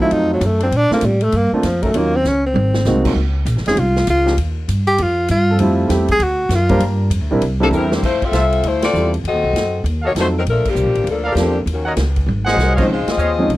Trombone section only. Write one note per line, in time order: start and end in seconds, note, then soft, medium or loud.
0.59 0.68 F3 medium
0.59 0.68 A#3 medium
0.59 0.67 D4 medium
0.59 0.68 A4 medium
1.81 1.90 F#3 medium
1.81 1.90 C#4 medium
1.81 1.91 D#4 medium
1.81 1.90 A#4 medium
3.03 3.12 F3 medium
3.03 3.12 C#4 medium
3.03 3.12 D#4 medium
3.03 3.12 C5 medium
4.25 4.33 F3 medium
4.25 4.34 C#4 medium
4.25 4.33 D#4 medium
4.25 4.33 G4 medium
5.49 5.88 F3 medium
5.49 5.88 C4 medium
5.49 5.88 A4 medium
6.68 7.09 G3 medium
6.68 7.09 D4 medium
6.68 7.08 F4 medium
6.68 7.09 A#4 loud
7.69 7.85 G3 medium
7.69 7.84 C4 medium
7.69 7.83 E4 medium
7.69 7.83 A#4 medium